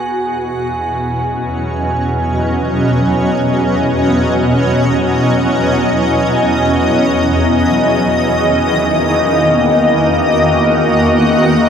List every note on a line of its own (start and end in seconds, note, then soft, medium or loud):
0.00 11.69 E2 medium
0.00 7.60 B2 medium
0.00 0.73 B3 medium
0.00 2.56 F#4 medium
0.00 0.77 G#4 medium
0.00 11.69 G#5 medium
0.18 7.61 F#3 medium
0.23 10.77 C#4 medium
1.21 11.69 D#5 medium
7.72 11.69 D#3 medium
7.97 11.69 A#3 medium
9.30 11.69 F#4 medium